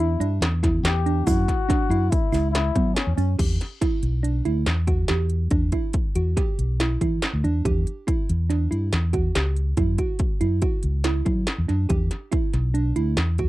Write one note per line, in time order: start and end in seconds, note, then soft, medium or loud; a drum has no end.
0.00 0.15 E2 loud
0.00 0.15 E4 medium
0.00 0.53 E4 loud
0.20 0.39 G2 medium
0.20 0.52 D4 medium
0.20 closed hi-hat medium
0.41 0.78 E2 medium
0.41 snare loud
0.41 closed hi-hat medium
0.63 0.94 E4 medium
0.63 kick medium
0.63 snare soft
0.63 closed hi-hat medium
0.83 1.21 E2 medium
0.83 1.27 G4 medium
0.83 snare loud
0.83 closed hi-hat medium
1.06 1.22 D4 medium
1.06 closed hi-hat medium
1.26 1.46 F#2 loud
1.26 1.58 E4 medium
1.26 2.12 F#4 loud
1.26 kick loud
1.26 closed hi-hat medium
1.26 shaker medium
1.48 kick medium
1.48 snare soft
1.48 closed hi-hat medium
1.69 1.85 D4 medium
1.69 kick loud
1.69 snare soft
1.69 closed hi-hat medium
1.90 2.09 F#2 medium
1.90 2.22 E4 medium
1.90 closed hi-hat medium
2.10 2.50 E4 medium
2.10 kick loud
2.10 closed hi-hat medium
2.10 shaker soft
2.32 2.70 C#2 medium
2.32 2.64 E4 medium
2.32 snare soft
2.32 closed hi-hat medium
2.32 shaker soft
2.51 2.96 E4 medium
2.51 snare loud
2.51 closed hi-hat medium
2.75 2.94 F#3 medium
2.75 3.07 B3 medium
2.75 kick medium
2.75 closed hi-hat medium
2.94 3.15 C#4 medium
2.94 snare loud
2.94 closed hi-hat medium
3.07 3.16 E2 medium
3.15 3.36 F#2 medium
3.15 3.36 C#4 medium
3.15 3.33 C#4 medium
3.15 closed hi-hat medium
3.15 shaker soft
3.39 3.58 E2 medium
3.39 3.70 G4 medium
3.39 kick medium
3.39 closed hi-hat medium
3.39 crash medium
3.61 snare soft
3.61 closed hi-hat medium
3.81 4.13 E4 medium
3.81 kick medium
3.81 snare soft
3.81 closed hi-hat medium
4.03 4.40 B1 medium
4.03 closed hi-hat soft
4.23 4.39 D4 medium
4.23 closed hi-hat medium
4.45 4.64 D2 medium
4.45 4.77 E4 medium
4.45 closed hi-hat soft
4.66 5.04 E2 medium
4.66 snare medium
4.66 closed hi-hat medium
4.87 5.03 F#4 medium
4.87 kick medium
4.87 closed hi-hat medium
5.08 5.47 E2 medium
5.08 5.40 G4 medium
5.08 snare loud
5.08 closed hi-hat medium
5.30 closed hi-hat soft
5.51 5.70 E2 medium
5.51 5.67 D4 medium
5.51 kick medium
5.51 closed hi-hat medium
5.72 6.04 E4 medium
5.72 kick medium
5.72 closed hi-hat medium
5.93 kick medium
5.93 closed hi-hat medium
6.15 6.34 E2 medium
6.15 6.31 F#4 medium
6.15 closed hi-hat medium
6.37 6.68 G4 medium
6.37 kick loud
6.37 snare soft
6.37 closed hi-hat medium
6.59 6.96 B1 medium
6.59 closed hi-hat medium
6.80 6.95 E4 medium
6.80 snare loud
6.80 closed hi-hat medium
7.01 7.20 E3 medium
7.01 7.33 E4 medium
7.01 kick medium
7.01 closed hi-hat medium
7.22 snare loud
7.22 closed hi-hat medium
7.33 7.42 D2 medium
7.44 7.62 E2 medium
7.44 7.60 D4 medium
7.44 closed hi-hat medium
7.65 7.83 E2 medium
7.65 7.96 G4 medium
7.65 kick medium
7.65 closed hi-hat medium
7.87 closed hi-hat soft
8.07 8.39 E4 medium
8.07 kick loud
8.07 closed hi-hat medium
8.29 8.66 E2 medium
8.29 closed hi-hat medium
8.50 8.65 D4 medium
8.50 snare soft
8.50 closed hi-hat medium
8.71 8.90 G2 medium
8.71 9.02 E4 medium
8.71 closed hi-hat soft
8.93 9.30 E2 medium
8.93 snare medium
8.93 closed hi-hat medium
9.13 9.29 F#4 medium
9.13 kick medium
9.13 closed hi-hat medium
9.35 9.72 C#2 medium
9.35 9.66 G4 medium
9.35 snare loud
9.35 closed hi-hat medium
9.56 closed hi-hat medium
9.77 9.96 F#2 loud
9.77 9.93 E4 medium
9.77 kick loud
9.77 closed hi-hat medium
9.98 10.30 F#4 medium
9.98 kick medium
9.98 closed hi-hat medium
10.19 kick loud
10.19 closed hi-hat medium
10.41 10.60 F#2 medium
10.41 10.57 E4 medium
10.41 closed hi-hat medium
10.62 10.94 F#4 medium
10.62 kick medium
10.62 closed hi-hat medium
10.83 11.21 C#2 medium
10.83 closed hi-hat medium
11.04 11.20 E4 medium
11.04 snare medium
11.04 closed hi-hat medium
11.25 11.45 F#3 medium
11.25 11.57 E4 medium
11.25 kick medium
11.25 closed hi-hat medium
11.47 snare loud
11.47 closed hi-hat medium
11.58 11.68 E2 medium
11.68 11.88 F#2 medium
11.68 11.84 D4 medium
11.68 snare soft
11.68 closed hi-hat soft
11.89 12.09 E2 medium
11.89 12.21 G4 medium
11.89 kick medium
11.89 closed hi-hat medium
12.11 snare soft
12.11 closed hi-hat medium
12.32 12.63 E4 medium
12.32 kick loud
12.32 closed hi-hat medium
12.54 12.91 B1 medium
12.54 snare soft
12.54 closed hi-hat soft
12.74 12.90 D4 medium
12.74 closed hi-hat medium
12.96 13.15 D2 medium
12.96 13.27 E4 medium
12.96 closed hi-hat medium
13.17 13.49 E2 medium
13.17 snare loud
13.17 closed hi-hat medium
13.38 13.49 F#4 medium
13.38 kick medium
13.38 closed hi-hat medium